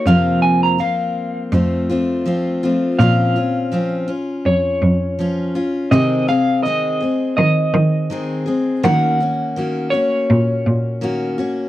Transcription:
<<
  \new Staff \with { instrumentName = "Clean electric guitar" } { \time 4/4 \key bes \minor \tempo 4 = 82 f''8 aes''16 bes''16 f''2. | f''2 des''2 | ees''8 f''8 ees''4 ees''4. r8 | ges''4. des''2~ des''8 | }
  \new Staff \with { instrumentName = "Steel-string acoustic guitar" } { \time 4/4 \key bes \minor <f, c f bes c' f'>4 <f bes c' f'>4 <f a c' f'>8 <f a c' f'>8 <f a c' f'>8 <f a c' f'>8 | <bes, f c' des' f'>8 <c' des' f'>8 <f c' des' f'>8 <des' f'>4. <f des' f'>8 <des' f'>8 | <c ees aes c' aes'>8 <aes c' aes'>8 <ees aes c' aes'>8 <aes c' aes'>4. <ees aes c' aes'>8 <aes c' aes'>8 | <ees bes des' ges'>8 <bes des' ges'>8 <ees bes des' ges'>8 <bes des' ges'>4. <ees bes des' ges'>8 <bes des' ges'>8 | }
  \new Staff \with { instrumentName = "Cello" } { \clef bass \time 4/4 \key bes \minor f,2 f,2 | bes,2 f,8 f,4. | c2 ees8 ees4. | ees2 bes,8 bes,4. | }
>>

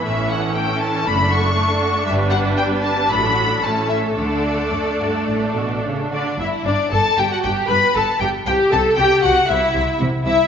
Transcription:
<<
  \new Staff \with { instrumentName = "Violin section" } { \time 4/4 \key d \major \tempo 4 = 117 e''8 fis''8 g''8 a''8 b''8 cis'''4. | e''8 fis''8 g''8 a''8 b''4 a''8 e''8 | d''2. r8 d''8 | \key g \major e''8 d''8 a''8 g''16 fis''16 g''8 b''8 a''8 g''8 |
g''8 a''8 g''8 fis''8 e''4 r8 e''8 | }
  \new Staff \with { instrumentName = "Viola section" } { \time 4/4 \key d \major << { cis'2 d'2~ | d'2. cis'4 | d'2.~ d'8 d'8 | \key g \major e'8 d'8 a'8 g'16 fis'16 g'8 b'8 a'8 g'8 |
g'8 a'8 g'8 fis'8 e'4 r8 e'8 | } \\ { e2 a2 | g2 fis4 a4~ | a2.~ a8 r8 | r1 |
r1 | } >> }
  \new Staff \with { instrumentName = "Violin section" } { \time 4/4 \key d \major << { a'1 | b'2 a'2~ | a'2.~ a'8 d'8 | \key g \major e'8 d'8 a'8 g'16 fis'16 g'8 b'8 a'8 g'8 |
g'8 a'8 g'8 fis'8 e'4 r8 e'8 | } \\ { a16 cis'16 e'16 cis'16 a16 cis'16 e'16 cis'16 a16 d'16 fis'16 d'16 a16 d'16 fis'16 d'16 | g16 b16 d'16 e'16 d'16 b16 g16 b16 a16 d'16 fis'16 d'16 a16 cis'16 e'16 cis'16 | a16 d'16 fis'16 d'16 a16 d'16 fis'16 d'16 a16 d'16 fis'16 d'16 a16 d'16 fis'16 d'16 | r1 |
r1 | } >> }
  \new Staff \with { instrumentName = "Cello section" } { \clef bass \time 4/4 \key d \major a,4 r4 fis,4 r4 | g,4 r4 a,4 a,4 | d4 fis,8 g,8 a,8 b,8 cis8 d8 | \key g \major g,8 g,8 g,8 g,8 g,8 g,8 g,8 g,8 |
c8 c8 c8 c8 c8 c8 c8 c8 | }
  \new Staff \with { instrumentName = "Double bass section" } { \clef bass \time 4/4 \key d \major a,,4 r4 fis,,4 r4 | g,,4 r4 a,,4 a,,4 | d,4 r4 a,,4 r4 | \key g \major g,,8 g,,8 g,,8 g,,8 g,,8 g,,8 g,,8 g,,8 |
c,8 c,8 c,8 c,8 c,8 c,8 c,8 c,8 | }
>>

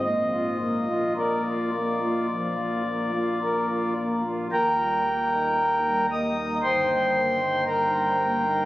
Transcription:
<<
  \new Staff \with { instrumentName = "Pipe organ" } { \time 4/4 \key ees \major \tempo 4 = 56 ees''4 d''2~ d''8 r8 | <bes' g'' bes''>4. <ees'' ees'''>8 <c'' g'' c'''>4 <bes' g'' bes''>4 | }
  \new Staff \with { instrumentName = "Pipe organ" } { \time 4/4 \key ees \major << { bes,16 f'16 bes16 f'16 bes'16 f'16 bes16 f'16 f16 f'16 bes16 f'16 bes'16 f'16 bes16 f'16 | ees,16 g16 bes16 ees'8 g16 bes16 ees'16 g,16 g16 bes16 ees'8 g16 bes16 ees'16 | } \\ { bes,,1 | ees,,2 g,,2 | } >> }
>>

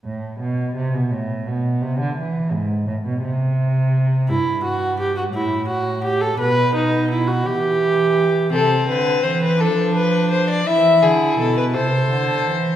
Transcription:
<<
  \new Staff \with { instrumentName = "Violin" } { \time 6/8 \key a \minor \tempo 4. = 56 r2. | r2. | r2. | r2. |
a'8 b'8 c''16 b'16 a'8 b'8 c''16 d''16 | e''8 gis'8 a'16 b'16 c''4. | }
  \new Staff \with { instrumentName = "Viola" } { \time 6/8 \key a \minor r2. | r2. | e'8 fis'8 g'16 fis'16 e'8 fis'8 g'16 a'16 | b'8 dis'8 e'16 fis'16 g'4. |
c'4. d'4. | e'4. a'4. | }
  \new Staff \with { instrumentName = "Cello" } { \clef bass \time 6/8 \key a \minor a,8 b,8 c16 b,16 a,8 b,8 c16 d16 | e8 gis,8 a,16 b,16 c4. | g,4. a,4. | b,4. e4. |
c8 d8 e8 f4. | e8 d8 b,8 c8 d8 e8 | }
>>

